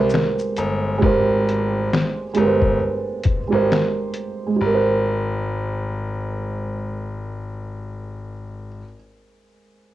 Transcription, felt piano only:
0, 0, Header, 1, 2, 480
1, 0, Start_track
1, 0, Key_signature, -4, "major"
1, 0, Tempo, 895522
1, 547, Time_signature, 4, 2, 24, 8
1, 5329, End_track
2, 0, Start_track
2, 0, Title_t, "Felt piano"
2, 0, Program_c, 0, 0
2, 0, Control_c, 0, 64, 127
2, 0, Note_on_c, 0, 56, 84
2, 0, Note_on_c, 0, 67, 74
2, 0, Note_on_c, 0, 70, 76
2, 0, Note_on_c, 0, 72, 91
2, 486, Note_off_c, 0, 56, 0
2, 493, Note_off_c, 0, 67, 0
2, 498, Note_off_c, 0, 70, 0
2, 504, Note_off_c, 0, 72, 0
2, 526, Note_on_c, 0, 56, 96
2, 540, Note_on_c, 0, 67, 77
2, 553, Note_on_c, 0, 70, 77
2, 564, Note_on_c, 0, 72, 96
2, 1191, Note_off_c, 0, 56, 0
2, 1198, Note_off_c, 0, 67, 0
2, 1205, Note_off_c, 0, 70, 0
2, 1210, Note_off_c, 0, 72, 0
2, 1252, Note_on_c, 0, 56, 86
2, 1264, Note_on_c, 0, 67, 73
2, 1276, Note_on_c, 0, 70, 70
2, 1289, Note_on_c, 0, 71, 75
2, 1318, Note_off_c, 0, 71, 0
2, 1322, Note_on_c, 0, 72, 88
2, 1804, Note_off_c, 0, 56, 0
2, 1810, Note_off_c, 0, 67, 0
2, 1816, Note_off_c, 0, 70, 0
2, 1839, Note_off_c, 0, 72, 0
2, 1863, Note_on_c, 0, 56, 71
2, 1877, Note_on_c, 0, 67, 66
2, 1889, Note_on_c, 0, 70, 69
2, 1899, Note_on_c, 0, 72, 90
2, 2385, Note_off_c, 0, 56, 0
2, 2394, Note_on_c, 0, 56, 77
2, 2410, Note_off_c, 0, 67, 0
2, 2416, Note_off_c, 0, 70, 0
2, 2421, Note_off_c, 0, 72, 0
2, 2444, Note_on_c, 0, 67, 64
2, 2474, Control_c, 0, 64, 0
2, 2492, Note_on_c, 0, 70, 70
2, 2541, Note_on_c, 0, 72, 80
2, 2556, Control_c, 0, 64, 127
2, 4646, Note_off_c, 0, 56, 0
2, 4696, Note_off_c, 0, 67, 0
2, 4744, Note_off_c, 0, 70, 0
2, 4793, Note_off_c, 0, 72, 0
2, 5329, End_track
0, 0, End_of_file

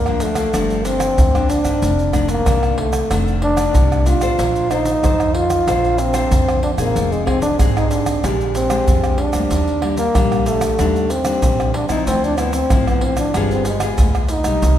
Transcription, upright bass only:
0, 0, Header, 1, 2, 480
1, 0, Start_track
1, 0, Key_signature, -2, "minor"
1, 0, Tempo, 640342
1, 1366, Time_signature, 4, 2, 24, 8
1, 11084, End_track
2, 0, Start_track
2, 0, Title_t, "Upright bass"
2, 0, Program_c, 0, 32
2, 0, Note_on_c, 0, 38, 78
2, 331, Note_off_c, 0, 38, 0
2, 403, Note_on_c, 0, 31, 82
2, 812, Note_off_c, 0, 31, 0
2, 884, Note_on_c, 0, 38, 83
2, 1191, Note_off_c, 0, 38, 0
2, 1235, Note_on_c, 0, 43, 74
2, 1342, Note_off_c, 0, 43, 0
2, 1366, Note_on_c, 0, 29, 90
2, 1775, Note_off_c, 0, 29, 0
2, 1848, Note_on_c, 0, 36, 77
2, 2256, Note_off_c, 0, 36, 0
2, 2328, Note_on_c, 0, 29, 80
2, 2737, Note_off_c, 0, 29, 0
2, 2810, Note_on_c, 0, 36, 89
2, 3117, Note_off_c, 0, 36, 0
2, 3156, Note_on_c, 0, 33, 73
2, 3264, Note_off_c, 0, 33, 0
2, 3289, Note_on_c, 0, 34, 89
2, 3698, Note_off_c, 0, 34, 0
2, 3770, Note_on_c, 0, 41, 80
2, 4179, Note_off_c, 0, 41, 0
2, 4250, Note_on_c, 0, 34, 89
2, 4659, Note_off_c, 0, 34, 0
2, 4731, Note_on_c, 0, 41, 87
2, 5038, Note_off_c, 0, 41, 0
2, 5080, Note_on_c, 0, 46, 76
2, 5187, Note_off_c, 0, 46, 0
2, 5213, Note_on_c, 0, 29, 82
2, 5621, Note_off_c, 0, 29, 0
2, 5693, Note_on_c, 0, 32, 78
2, 6101, Note_off_c, 0, 32, 0
2, 6174, Note_on_c, 0, 34, 86
2, 6582, Note_off_c, 0, 34, 0
2, 6652, Note_on_c, 0, 41, 83
2, 6958, Note_off_c, 0, 41, 0
2, 6999, Note_on_c, 0, 38, 65
2, 7107, Note_off_c, 0, 38, 0
2, 7130, Note_on_c, 0, 39, 85
2, 7539, Note_off_c, 0, 39, 0
2, 7609, Note_on_c, 0, 34, 79
2, 8018, Note_off_c, 0, 34, 0
2, 8090, Note_on_c, 0, 39, 81
2, 8499, Note_off_c, 0, 39, 0
2, 8568, Note_on_c, 0, 34, 85
2, 8875, Note_off_c, 0, 34, 0
2, 8915, Note_on_c, 0, 37, 69
2, 9024, Note_off_c, 0, 37, 0
2, 9047, Note_on_c, 0, 38, 90
2, 9456, Note_off_c, 0, 38, 0
2, 9528, Note_on_c, 0, 33, 79
2, 9936, Note_off_c, 0, 33, 0
2, 10009, Note_on_c, 0, 31, 88
2, 10417, Note_off_c, 0, 31, 0
2, 10489, Note_on_c, 0, 38, 95
2, 10794, Note_off_c, 0, 38, 0
2, 10833, Note_on_c, 0, 35, 70
2, 10941, Note_off_c, 0, 35, 0
2, 10962, Note_on_c, 0, 36, 84
2, 11084, Note_off_c, 0, 36, 0
2, 11084, End_track
0, 0, End_of_file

